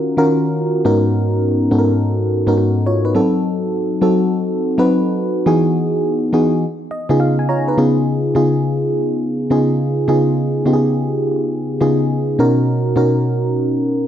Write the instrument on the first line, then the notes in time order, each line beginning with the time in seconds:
fm electric piano
Already playing: D#3 C#4 F4 F#4 A#4
0.17 D#3 C#4 F4 F#4 A#4
0.85 G#2 B3 C#4 D#4 F#4 A#4
1.71 G#2 B3 C#4 D#4 F#4 A4
1.79 A#4
2.47 G#2 B3 C#4 D#4 F#4 A#4
2.58 C#4 A#4
2.86 F4 C#5
3.05 D#4 B4
3.15 F#3 C4 D#4 F#4 A4
4.01 F#3 C4 D#4 F#4 A4
4.78 F#3 C4 D#4 F#4 B4
5.46 E3 B3 D#4 F#4 G#4
6.33 E3 B3 D#4 F#4 G#4
6.91 D#5
7.09 C#3 B3 D#4 F4 G#4
7.20 G#4 F5
7.39 G#5
7.49 F4 C#5 A#5
7.68 D#4 B4
7.77 C#3 B3 D#4 F4 G#4
8.35 C#3 B3 D#4 F4 G#4
9.50 C#3 B3 D#4 F4 G#4
10.08 C#3 B3 D#4 F4 G#4
10.65 C#3 B3 D#4 F4 G4
10.73 G#4
11.81 C#3 B3 D#4 F4 G#4
12.39 B2 C#4 D#4 F#4 A#4
12.96 B2 C#4 D#4 F#4 A#4